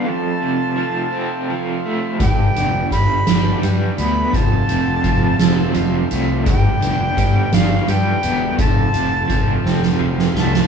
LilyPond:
<<
  \new Staff \with { instrumentName = "Flute" } { \time 6/8 \key f \lydian \tempo 4. = 56 a''2~ a''8 r8 | g''4 b''4 r8 b''8 | a''2~ a''8 r8 | g''4. f''8 g''4 |
a''2 r8 a''8 | }
  \new Staff \with { instrumentName = "Transistor combo organ" } { \time 6/8 \key f \lydian <a f' c''>2. | <g d' b'>2. | <a f' c''>2. | <g d' b'>2. |
<a f' c''>2. | }
  \new Staff \with { instrumentName = "Overdriven electric guitar" } { \clef bass \time 6/8 \key f \lydian f,8 c8 f8 c'8 f8 a8 | g,8 d8 g8 d'8 g8 b8 | f,8 c8 f8 c'8 f8 a8 | g,8 d8 g8 d'8 g8 b8 |
f,8 c8 f8 c'8 f8 a8 | }
  \new Staff \with { instrumentName = "Fingered electric bass" } { \clef bass \time 6/8 \key f \lydian r2. | g,,8 f,,8 g,,8 g,,8 g,8 d,8 | f,,8 f,,8 f,,8 f,,8 f,,8 c,8 | g,,8 f,,8 g,,8 g,,8 g,8 e,,8 |
f,,8 f,,8 f,,8 f,,8 f,,8 c,8 | }
  \new DrumStaff \with { instrumentName = "Drums" } \drummode { \time 6/8 r4. r4. | <hh bd>8 hh8 <hh bd>8 <hh sn>8 hh8 hh8 | <hh bd>8 hh8 <hh bd>8 <hh sn>8 hh8 hh8 | <hh bd>8 hh8 <hh bd>8 <hh sn>8 hh8 hh8 |
<hh bd>8 hh8 <hh bd>8 sn16 sn8 sn16 sn16 sn16 | }
>>